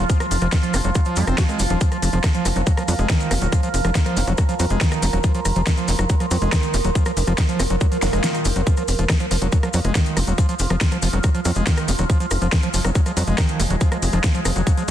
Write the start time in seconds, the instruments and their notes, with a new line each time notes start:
Already playing: synth drone F3 F4
0.09 acid bass F3, kick, closed hi-hat, maracas
0.20 acid bass F3, cross-stick, closed hi-hat, maracas
0.31 analog synth bass F1, open hi-hat, maracas
0.41 analog synth bass F1, acid bass F3, cross-stick, closed hi-hat, maracas
0.52 acid bass D#3, kick, snare, closed hi-hat, maracas
0.63 acid bass F3, closed hi-hat, maracas
0.74 analog synth bass F1, acid bass F4, cross-stick, open hi-hat, maracas
0.84 analog synth bass F1, acid bass F#3, closed hi-hat, maracas
0.95 acid bass F#3, kick, cross-stick, closed hi-hat, maracas
1.05 acid bass F3, closed hi-hat, maracas
1.16 analog synth bass F2, acid bass G#3, open hi-hat, maracas
1.27 analog synth bass F1, acid bass C4, cross-stick, closed hi-hat, maracas
1.38 acid bass F#4, kick, snare, closed hi-hat, maracas
1.49 acid bass G#3, cross-stick, closed hi-hat, maracas
1.59 analog synth bass F1, acid bass F3, open hi-hat, maracas
1.70 analog synth bass D#1, acid bass F3, closed hi-hat, maracas
1.81 synth drone A#4, kick, closed hi-hat, maracas
1.92 acid bass F3, cross-stick, closed hi-hat, maracas
2.02 analog synth bass F1, open hi-hat, maracas
2.13 analog synth bass F1, acid bass F3, closed hi-hat, maracas
2.24 acid bass D#3, kick, cross-stick, snare, closed hi-hat, maracas
2.34 acid bass F3, closed hi-hat, maracas
2.45 analog synth bass F1, acid bass F4, cross-stick, open hi-hat, maracas
2.56 analog synth bass F1, acid bass F#3, closed hi-hat, maracas
2.67 acid bass F#3, kick, closed hi-hat, maracas
2.77 acid bass F3, cross-stick, closed hi-hat, maracas
2.88 analog synth bass F2, acid bass F#3, open hi-hat, maracas
2.99 analog synth bass F1, acid bass G#3, cross-stick, closed hi-hat, maracas
3.09 acid bass D#3, kick, snare, closed hi-hat, maracas
3.20 closed hi-hat, maracas
3.31 analog synth bass F1, acid bass F4, cross-stick, open hi-hat, maracas
3.42 analog synth bass D#1, acid bass F#3, closed hi-hat, maracas
3.52 acid bass F3, kick, cross-stick, closed hi-hat, maracas
3.63 acid bass F3, closed hi-hat, maracas
3.74 analog synth bass F1, open hi-hat, maracas
3.85 analog synth bass F1, acid bass F3, cross-stick, closed hi-hat, maracas
3.95 acid bass D#3, kick, snare, closed hi-hat, maracas
4.05 acid bass F3, cross-stick, closed hi-hat, maracas
4.17 analog synth bass F1, acid bass F4, open hi-hat, maracas
4.27 analog synth bass F1, acid bass F#3, closed hi-hat, maracas
4.38 acid bass F#3, kick, cross-stick, closed hi-hat, maracas
4.49 acid bass F3, closed hi-hat, maracas
4.59 analog synth bass F2, acid bass F#3, cross-stick, open hi-hat, maracas
4.70 analog synth bass F1, acid bass G#3, closed hi-hat, maracas
4.81 acid bass D#3, kick, snare, closed hi-hat, maracas
4.92 cross-stick, closed hi-hat, maracas
5.02 analog synth bass F1, acid bass F4, open hi-hat, maracas
5.13 analog synth bass D#1, acid bass F#3, cross-stick, closed hi-hat, maracas
5.24 acid bass F3, kick, closed hi-hat, maracas
5.35 acid bass F3, closed hi-hat, maracas
5.45 analog synth bass F1, cross-stick, open hi-hat, maracas
5.56 analog synth bass F1, acid bass F3, closed hi-hat, maracas
5.67 acid bass D#3, kick, cross-stick, snare, closed hi-hat, maracas
5.77 acid bass F3, closed hi-hat, maracas
5.88 analog synth bass F1, acid bass F4, open hi-hat, maracas
5.99 analog synth bass F1, acid bass F#3, cross-stick, closed hi-hat, maracas
6.09 acid bass F#3, kick, closed hi-hat, maracas
6.20 acid bass F3, cross-stick, closed hi-hat, maracas
6.31 analog synth bass F2, acid bass F#3, open hi-hat, maracas
6.42 analog synth bass F1, acid bass G#3, closed hi-hat, maracas
6.52 acid bass D#3, kick, cross-stick, snare, closed hi-hat, maracas
6.63 closed hi-hat, maracas
6.74 analog synth bass F1, acid bass F4, cross-stick, open hi-hat, maracas
6.84 analog synth bass D#1, acid bass F#3, closed hi-hat, maracas
6.95 acid bass F3, kick, closed hi-hat, maracas
7.05 acid bass F3, cross-stick, closed hi-hat, maracas
7.17 analog synth bass F1, open hi-hat, maracas
7.27 analog synth bass F1, acid bass F3, cross-stick, closed hi-hat, maracas
7.38 acid bass D#3, kick, snare, closed hi-hat, maracas
7.49 acid bass F3, closed hi-hat, maracas
7.60 analog synth bass F1, acid bass F4, cross-stick, open hi-hat, maracas
7.70 analog synth bass F1, acid bass F#3, closed hi-hat, maracas
7.81 acid bass F#3, kick, cross-stick, closed hi-hat, swell, maracas
7.92 acid bass F3, closed hi-hat, maracas
8.02 analog synth bass F1, acid bass F#3, snare, open hi-hat, zap, maracas
8.13 analog synth bass F1, acid bass G#3, cross-stick, closed hi-hat, maracas
8.24 acid bass D#3, snare, closed hi-hat, maracas
8.35 cross-stick, closed hi-hat, maracas
8.45 analog synth bass F1, acid bass F4, open hi-hat, maracas
8.56 analog synth bass F1, acid bass F#3, closed hi-hat, maracas
8.67 acid bass F3, synth drone F3 F4, kick, closed hi-hat, maracas
8.77 acid bass F3, cross-stick, closed hi-hat, maracas
8.88 analog synth bass F1, open hi-hat, maracas
8.99 analog synth bass F1, acid bass F3, closed hi-hat, maracas
9.10 acid bass D#3, kick, cross-stick, snare, closed hi-hat, maracas
9.20 acid bass F3, closed hi-hat, maracas
9.31 analog synth bass F1, acid bass F3, cross-stick, open hi-hat, maracas
9.42 analog synth bass F1, acid bass F#3, closed hi-hat, maracas
9.52 acid bass F#3, kick, closed hi-hat, maracas
9.63 acid bass F3, cross-stick, closed hi-hat, maracas
9.73 analog synth bass F2, acid bass F#3, open hi-hat, maracas
9.84 analog synth bass F1, acid bass G#3, cross-stick, closed hi-hat, maracas
9.95 acid bass D#3, kick, snare, closed hi-hat, maracas
10.06 closed hi-hat, maracas
10.17 analog synth bass F1, acid bass F4, cross-stick, open hi-hat, maracas
10.27 analog synth bass D#1, acid bass F#3, closed hi-hat, maracas
10.38 acid bass F3, kick, cross-stick, closed hi-hat, maracas
10.49 acid bass F3, closed hi-hat, maracas
10.59 analog synth bass F1, open hi-hat, maracas
10.70 analog synth bass F1, acid bass F3, cross-stick, closed hi-hat, maracas
10.81 acid bass D#3, kick, snare, closed hi-hat, maracas
10.91 acid bass F3, cross-stick, closed hi-hat, maracas
11.02 analog synth bass F1, acid bass F3, open hi-hat, maracas
11.13 analog synth bass F1, acid bass F#3, closed hi-hat, maracas
11.23 acid bass F#3, kick, cross-stick, closed hi-hat, maracas
11.35 acid bass F3, closed hi-hat, maracas
11.45 analog synth bass F2, acid bass F#3, cross-stick, open hi-hat, maracas
11.55 analog synth bass F1, acid bass G#3, closed hi-hat, maracas
11.67 acid bass D#3, kick, snare, closed hi-hat, maracas
11.77 cross-stick, closed hi-hat, maracas
11.88 analog synth bass F1, acid bass F4, open hi-hat, maracas
11.98 analog synth bass D#1, acid bass F#3, cross-stick, closed hi-hat, maracas
12.10 acid bass F3, synth drone G#3, kick, closed hi-hat, maracas
12.20 acid bass F3, closed hi-hat, maracas
12.31 analog synth bass F1, cross-stick, open hi-hat, maracas
12.42 analog synth bass F1, acid bass F3, closed hi-hat, maracas
12.52 acid bass D#3, kick, cross-stick, snare, closed hi-hat, maracas
12.63 acid bass F3, closed hi-hat, maracas
12.74 analog synth bass F1, acid bass F3, open hi-hat, maracas
12.85 analog synth bass F1, acid bass F#3, cross-stick, closed hi-hat, maracas
12.95 acid bass F#3, kick, closed hi-hat, maracas
13.06 acid bass F3, cross-stick, closed hi-hat, maracas
13.17 analog synth bass F2, acid bass F#3, open hi-hat, maracas
13.27 analog synth bass F1, acid bass G#3, closed hi-hat, maracas
13.38 acid bass D#3, kick, cross-stick, snare, closed hi-hat, maracas
13.48 closed hi-hat, maracas
13.60 analog synth bass F1, acid bass F4, cross-stick, open hi-hat, maracas
13.70 analog synth bass D#1, acid bass F#3, closed hi-hat, maracas
13.81 acid bass F3, kick, closed hi-hat, maracas
13.92 acid bass F3, cross-stick, closed hi-hat, maracas
14.02 analog synth bass F1, open hi-hat, maracas
14.12 analog synth bass F1, acid bass F3, cross-stick, closed hi-hat, maracas
14.24 acid bass D#3, kick, snare, closed hi-hat, maracas
14.35 acid bass F3, closed hi-hat, maracas
14.45 analog synth bass F1, acid bass F3, cross-stick, open hi-hat, maracas
14.56 analog synth bass F1, acid bass F#3, closed hi-hat, maracas
14.67 acid bass F#3, kick, cross-stick, closed hi-hat, maracas
14.77 acid bass F3, closed hi-hat, maracas